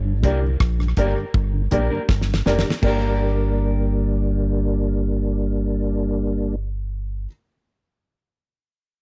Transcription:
Already playing: G1
0.05 G2 D3
0.22 C2 G3 A#3 D4 G4 A#4 D5, kick, closed hi-hat
0.42 G2 D3
0.60 A#1, kick, cross-stick
0.79 G2 D3, cross-stick
0.97 G1 G3 A#3 D4 G4 A#4 D5, kick, closed hi-hat
1.17 G2 D3
1.34 G1, kick
1.53 G2 D3
1.71 A#1 G3 A#3 D4 G4 A#4 D5, kick, closed hi-hat
1.90 G2 D3 A#3 D4 G4 A#4
2.09 G1, kick, snare
2.21 snare
2.28 G2 D3
2.34 snare
2.46 F1 G3 A#3 D4 G4 A#4 D5, snare
2.59 snare
2.64 G2 D3 A#4 D5
2.70 snare
2.82 G1 G3 A#3 D4 G4 A#4 D5, kick, crash
2.87 A#4

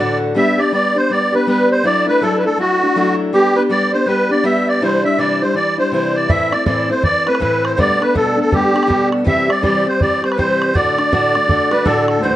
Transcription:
Already playing: D5
0.00 D2 A2 D3 A3 D4 F#4
0.35 G3 B3 D4 G4 E5
0.58 B3 D4 G4 D5
0.72 G3 B3 D4 G4 D5
0.95 B3 D4 G4 C5
1.10 G3 B3 D4 G4 D5
1.32 B3 D4 G4 B4
1.47 G3 B3 D4 G4 B4
1.71 C5
1.83 F#3 A3 D4 E4 D5
2.06 A3 D4 E4 B4
2.21 F#3 A3 D4 E4 A4
2.38 B4
2.44 A3 D4 E4 A4
2.58 F#3 A3 D4 E4 F#4
2.81 A3 D4 E4
2.96 F#3 A3 D4 E4
3.33 G3 B3 D4 G4
3.55 B3 D4 G4 B4
3.69 G3 B3 D4 G4 D5
3.92 B3 D4 G4 C5
4.06 G3 B3 D4 G4 B4
4.29 B3 D4 G4 D5
4.43 G3 B3 D4 G4 E5
4.68 D5
4.81 C3 E3 G3 D4 E4 C5
5.03 G3 D4 E4 E5
5.18 C3 E3 G3 D4 E4 D5
5.41 G3 D4 E4 C5
5.54 E3 G3 D4 E4 D5
5.78 G3 D4 E4 C5
5.92 C3 E3 G3 D4 E4 C5
6.16 D5
6.29 A2 E3 A3 C4 E4 E5, bodhran
6.52 A3 C4 E4 D5, bodhran
6.66 A2 E3 A3 C4 E4 D5, bodhran
6.90 A3 C4 E4 C5
7.03 E3 A3 C4 E4 D5, bodhran
7.26 A3 C4 E4 B4, bodhran
7.35 bodhran
7.40 A2 E3 A3 C4 E4 B4, bodhran
7.65 C5, bodhran
7.77 B2 G3 A3 B3 D4 D5, bodhran
8.00 A3 B3 D4 B4, bodhran
8.14 B2 G3 A3 B3 D4 A4, bodhran
8.37 A3 B3 D4 A4
8.51 G3 A3 B3 D4 G4, bodhran
8.74 A3 B3 D4, bodhran
8.83 B2, bodhran
8.87 G3 A3 B3 D4, bodhran
9.12 bodhran
9.24 C3 E3 G3 C4 G4 E5, bodhran
9.48 G3 C4 G4 D5, bodhran
9.62 C3 E3 G3 C4 G4 D5, bodhran
9.85 G3 C4 G4 C5
9.99 E3 G3 C4 G4 D5, bodhran
10.22 G3 C4 G4 C5, bodhran
10.31 B4, bodhran
10.37 C3 E3 G3 C4 G4 C5, bodhran
10.62 bodhran
10.73 D2 A2 D3 A3 D4 F#4 D5, bodhran
10.97 D3 A3 D4 F#4, bodhran
11.11 D2 A2 D3 A3 D4 F#4, bodhran
11.34 D3 A3 D4 F#4, bodhran
11.48 D3 A3 D4 F#4, bodhran
11.71 D3 A3 D4 F#4 B4, bodhran
11.85 D2 A2 D3 A3 D4 F#4 A4, bodhran
12.08 A4, bodhran
12.22 D2 A2 D3 E3 A3 D4 F#4 C5

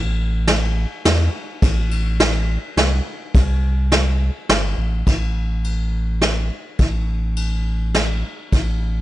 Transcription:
Already playing: A1
0.47 snare, ride
1.05 E2, snare, ride
1.62 A1, kick, ride
1.91 ride
2.20 snare, ride
2.77 C2, snare, ride
3.35 C2, kick, ride
3.92 snare, ride
4.49 G1, snare, ride
4.77 A1
5.07 A1, kick, ride
5.64 ride
6.22 snare, ride
6.79 A1, kick, ride
7.36 ride
7.94 snare, ride
8.52 A1, kick, ride

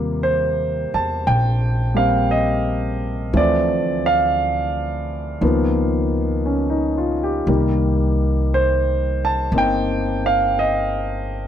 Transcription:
Already playing: D#2 C3 G3 A#3 F4
0.23 C5
0.94 E2 A5
1.27 A#1 G5
1.94 G3 A#3 C4 F5
2.31 D#5
3.33 D2 E3 F3 A3 C4 D5
4.06 F5
5.41 C#2 D#3 F3 A#3 B3
6.46 C#4
6.70 D#4
6.98 F4
7.23 G4
7.47 C2 D#3 G3 A#3
8.54 C5
9.25 A5
9.52 G1 A#3 C4 D#4
9.58 G5
10.26 F5
10.59 D#5

